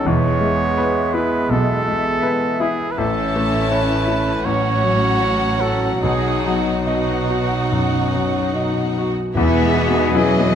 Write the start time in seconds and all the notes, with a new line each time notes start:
Already playing: F#3 D#4
0.06 E1 E2 E3 G#3 B3 C#5 E5
0.41 G#3
0.78 B3 E4 B4 G#5
1.14 E4 B4
1.50 B1 B2 A4
1.88 G#3
2.22 B3 E4 B4 G#5
2.60 E4 G#4
2.91 B4
2.97 A1 A2 A3 C#4 E4 A4 A5
3.36 A3
3.71 B4 C#5
4.08 E4
4.43 A1 A2 F#3 C#4 F#4 C#5 F#5
4.83 F#3
5.20 C#5
5.61 F#4 A4
6.02 B1 B2 D#4 F#4 G#4 F#5
6.46 F#3
6.87 B3 D#4 F#4 D#5 F#5
7.30 F#4
7.72 F#2 C#4
8.15 F#3
8.54 D#4 D#5
8.98 F#4
9.35 E2 E3 B3 E4 G#4 E5 G#5
9.62 G#3
9.73 D#4 F#4
9.90 B2
10.12 F#3 C#4 E4 G#4 B4 D#5
10.39 B2
10.49 B3 A4